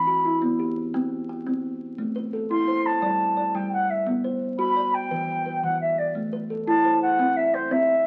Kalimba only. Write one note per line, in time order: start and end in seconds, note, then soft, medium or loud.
0.00 0.25 E3 medium
0.07 0.60 F#4 medium
0.25 0.77 E4 medium
0.42 0.77 B3 medium
0.59 1.12 G4 medium
0.94 1.29 C4 medium
0.94 1.28 G5 medium
1.29 1.81 G5 medium
1.47 1.81 C4 medium
1.98 2.33 A3 medium
2.16 2.68 B4 medium
2.33 2.85 A4 medium
2.51 2.85 E4 medium
2.68 3.20 C5 medium
3.02 3.37 G3 medium
3.02 3.36 D5 medium
3.37 3.89 D5 medium
3.55 3.89 G3 medium
4.07 4.41 B3 medium
4.24 4.76 C5 medium
4.59 4.93 F#4 medium
4.76 5.28 D5 medium
5.11 5.46 E3 medium
5.11 5.45 B4 medium
5.46 5.98 B4 medium
5.63 5.98 E3 medium
6.15 6.50 A3 medium
6.33 6.85 B4 medium
6.50 7.02 A4 medium
6.67 7.02 E4 medium
6.85 7.36 C5 medium
7.19 7.54 C4 medium
7.19 7.53 G5 medium
7.54 8.06 G5 medium
7.71 8.06 C4 loud